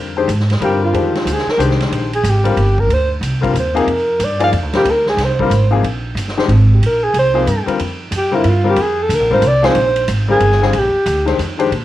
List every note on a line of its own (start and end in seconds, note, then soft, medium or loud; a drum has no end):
0.00 0.27 F2 medium
0.00 0.12 D3 soft
0.00 0.13 G3 soft
0.00 0.13 C4 soft
0.00 0.13 F4 soft
0.00 0.13 A#4 medium
0.17 0.27 D#3 medium
0.17 0.27 G#3 medium
0.17 0.28 D4 medium
0.17 0.28 G4 medium
0.17 0.28 C5 medium
0.28 0.60 G#2 medium
0.28 hi-hat pedal medium
0.28 ride medium
0.40 snare soft
0.50 snare soft
0.50 ride soft
0.61 0.92 G2 medium
0.61 1.11 D3 medium
0.61 1.11 G3 medium
0.61 1.11 C4 soft
0.61 1.11 F4 medium
0.61 0.82 G4 medium
0.61 1.11 A#4 medium
0.61 ride medium
0.84 1.34 F4 medium
0.93 1.25 F2 medium
0.93 1.43 D#3 medium
0.93 1.43 G#3 soft
0.93 1.43 D4 medium
0.93 1.43 G4 medium
0.93 1.44 C5 medium
0.93 ride medium
1.15 snare soft
1.15 ride soft
1.25 1.45 D2 medium
1.25 hi-hat pedal medium
1.25 ride medium
1.33 1.52 G#4 medium
1.38 snare soft
1.46 muted upright bass stroke soft
1.46 snare soft
1.51 1.61 A#4 medium
1.58 1.90 C2 medium
1.58 2.08 D#3 medium
1.58 2.08 G#3 medium
1.58 2.08 D4 medium
1.58 2.08 G4 medium
1.58 2.08 C5 medium
1.58 hi-hat pedal soft
1.58 ride medium
1.71 snare soft
1.81 snare soft
1.81 ride soft
1.91 2.23 A#1 medium
1.91 ride medium
2.13 2.31 G#4 medium
2.13 ride soft
2.23 2.55 G#1 medium
2.23 hi-hat pedal medium
2.23 ride medium
2.30 2.81 G4 medium
2.44 2.55 D3 medium
2.44 2.55 G3 medium
2.44 2.55 C4 medium
2.44 2.56 F4 medium
2.44 2.55 A#4 medium
2.44 ride soft
2.56 2.87 G1 medium
2.56 ride medium
2.78 2.95 A#4 medium
2.78 kick soft
2.88 3.20 D2 medium
2.88 ride medium
2.93 3.12 C5 medium
3.21 3.53 C2 medium
3.21 hi-hat pedal medium
3.21 ride medium
3.41 3.52 D3 medium
3.41 3.53 G3 medium
3.41 3.53 C4 medium
3.41 3.53 F4 medium
3.41 3.53 A#4 medium
3.41 kick medium
3.41 ride soft
3.53 3.86 D#2 medium
3.53 hi-hat pedal soft
3.53 ride medium
3.59 3.79 C5 medium
3.74 3.85 C3 medium
3.74 3.85 F3 medium
3.74 3.86 A#3 medium
3.74 3.86 D#4 medium
3.74 3.86 G#4 medium
3.74 4.26 A#4 medium
3.74 ride soft
3.86 4.18 F2 medium
3.86 ride medium
4.19 4.51 G2 medium
4.19 hi-hat pedal medium
4.19 ride medium
4.24 4.43 D5 medium
4.39 4.51 F3 medium
4.39 4.51 A#3 medium
4.39 4.51 D#4 medium
4.39 4.51 G#4 medium
4.39 4.51 D5 medium
4.39 ride soft
4.44 4.50 F5 loud
4.52 4.63 F2 medium
4.52 ride medium
4.63 4.73 D2 medium
4.73 4.84 A#1 medium
4.73 4.84 D3 medium
4.73 4.84 G3 medium
4.73 4.84 C4 soft
4.73 4.85 F4 medium
4.73 4.92 G4 medium
4.73 4.85 A#4 medium
4.73 snare soft
4.73 ride soft
4.85 5.16 D2 medium
4.85 ride medium
4.91 5.09 A#4 medium
5.06 5.26 G#4 medium
5.06 snare soft
5.17 5.49 C2 medium
5.17 snare soft
5.17 ride medium
5.24 5.74 C5 medium
5.39 5.49 D3 medium
5.39 5.50 G3 medium
5.39 5.50 C4 medium
5.39 5.50 F4 medium
5.39 5.50 A#4 medium
5.39 kick medium
5.50 5.82 G#1 medium
5.50 hi-hat pedal medium
5.50 ride medium
5.71 5.81 C3 medium
5.71 5.82 F3 medium
5.71 5.81 A#3 medium
5.71 5.82 D#4 medium
5.71 5.82 G#4 medium
5.83 6.14 A#1 medium
5.83 ride medium
6.15 6.47 G1 medium
6.15 hi-hat pedal medium
6.15 ride medium
6.28 snare soft
6.37 6.47 D#3 medium
6.37 6.47 G#3 medium
6.37 6.47 D4 medium
6.37 6.48 G4 medium
6.37 6.48 C5 medium
6.37 snare soft
6.48 6.80 G#1 medium
6.48 ride soft
6.73 6.87 G4 medium
6.81 7.12 A#1 medium
6.81 ride medium
6.86 7.05 A#4 medium
7.03 7.14 G#4 medium
7.14 7.45 C2 medium
7.14 ride medium
7.19 7.66 C5 medium
7.34 7.45 C3 medium
7.34 7.45 F3 medium
7.34 7.45 A#3 medium
7.34 7.45 D#4 medium
7.34 7.45 G#4 medium
7.47 7.66 G2 medium
7.47 hi-hat pedal medium
7.47 ride medium
7.66 7.77 D3 medium
7.66 7.77 G3 medium
7.66 7.78 C4 medium
7.66 7.78 F4 medium
7.66 7.78 A#4 medium
7.66 muted upright bass stroke soft
7.66 ride soft
7.79 8.10 F2 medium
7.79 ride medium
8.11 8.43 F#2 medium
8.11 hi-hat pedal medium
8.11 ride medium
8.17 8.37 G4 medium
8.31 8.42 D3 medium
8.31 8.43 G3 medium
8.31 8.43 C4 medium
8.31 8.43 F4 medium
8.31 8.43 A#4 medium
8.36 8.50 E4 medium
8.44 8.75 G2 medium
8.44 ride medium
8.49 8.67 F4 medium
8.64 8.75 D3 medium
8.64 8.75 G3 medium
8.64 8.75 C4 medium
8.64 8.75 F4 medium
8.64 8.76 A#4 medium
8.70 8.83 G4 medium
8.76 9.08 F2 medium
8.76 ride medium
8.81 9.04 G#4 medium
9.02 9.16 A4 medium
9.09 9.20 D2 medium
9.09 hi-hat pedal medium
9.09 ride medium
9.15 9.33 A#4 medium
9.20 9.30 A#1 medium
9.30 9.41 G#1 medium
9.30 9.41 D3 medium
9.30 9.41 G3 medium
9.30 9.41 C4 medium
9.30 9.42 F4 medium
9.30 9.42 A#4 medium
9.30 9.49 C5 medium
9.42 9.74 C2 medium
9.42 hi-hat pedal soft
9.42 ride medium
9.47 9.67 D5 loud
9.62 9.73 C3 medium
9.62 9.73 F3 medium
9.62 9.74 A#3 medium
9.62 9.74 D#4 medium
9.62 9.74 G#4 medium
9.62 10.09 C5 medium
9.62 snare medium
9.62 ride soft
9.75 10.07 A#1 medium
9.75 ride medium
9.96 ride soft
10.08 10.40 G#1 medium
10.08 hi-hat pedal medium
10.08 ride medium
10.28 10.39 D3 medium
10.28 10.39 G3 medium
10.28 10.39 C4 medium
10.28 10.39 F4 medium
10.28 10.80 G#4 loud
10.28 10.40 A#4 medium
10.40 10.72 G1 medium
10.40 ride medium
10.51 snare soft
10.61 10.72 D3 medium
10.61 10.72 G3 medium
10.61 10.72 C4 medium
10.61 10.72 F4 medium
10.61 10.73 G#4 medium
10.61 snare soft
10.73 10.93 A#1 medium
10.73 ride medium
10.79 11.30 G4 medium
10.95 muted upright bass stroke soft
11.06 11.38 D2 loud
11.06 hi-hat pedal medium
11.06 ride medium
11.25 11.37 D#3 medium
11.25 11.37 G#3 medium
11.25 11.37 D4 medium
11.25 11.37 G4 medium
11.25 11.38 C5 medium
11.25 snare soft
11.25 ride medium
11.39 11.71 F2 medium
11.39 hi-hat pedal soft
11.39 ride medium
11.58 11.69 D#3 medium
11.58 11.70 G#3 medium
11.58 11.70 D4 medium
11.58 11.70 G4 medium
11.58 11.71 C5 medium
11.58 ride soft
11.71 11.85 A#2 medium
11.71 ride medium